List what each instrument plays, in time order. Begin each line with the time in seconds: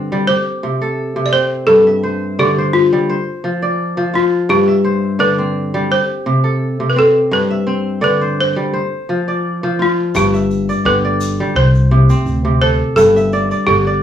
Already playing: kora G2 D3 C4 D5, balafon B4
0.12 kora G3
0.28 kora G4, balafon C5
0.63 kora C3
0.82 kora A4
1.16 kora C3
1.26 balafon D5
1.33 kora C4, balafon C5
1.67 kora G2, balafon A4
1.87 kora E5
2.03 kora C5
2.38 kora D3 D5, balafon G4
2.58 kora C5
2.73 balafon F4
2.92 kora G3
3.09 kora C5
3.44 kora F3
3.62 kora D5
3.97 kora F3
4.13 kora F4, balafon F4
4.49 kora G2, balafon G4
4.68 kora E5
4.85 kora C5
5.19 kora D3 D5, balafon B4
5.39 kora C4
5.74 kora G3
5.91 kora G4, balafon C5
6.26 kora C3
6.44 kora A4
6.80 kora C3
6.90 balafon B4
6.96 kora C4, balafon A4
7.31 kora G2, balafon B4
7.50 kora E5
7.67 kora C4
8.01 kora D3 D5, balafon B4
8.21 kora C5
8.40 balafon C5
8.56 kora G3
8.73 kora C5
9.09 kora F3
9.28 kora D5
9.63 kora F3
9.79 kora F4, balafon F4
10.15 upright bass G1, kora G2, balafon G4, shaker
10.34 kora E5, shaker
10.51 shaker
10.69 kora D5, shaker
10.85 upright bass G1, kora D3 G4, balafon B4
11.05 kora D5
11.21 shaker
11.40 kora G3
11.55 upright bass C2, kora C5, balafon C5
11.75 shaker
11.91 kora C3
12.10 kora C4, shaker
12.26 upright bass D2, shaker
12.45 kora C3
12.61 kora A4, balafon C5
12.96 upright bass G1, kora G2, balafon A4, shaker
13.16 kora E5, shaker
13.32 kora D5, shaker
13.51 kora D5, shaker
13.66 upright bass G1, kora D3, balafon G4
13.86 kora D5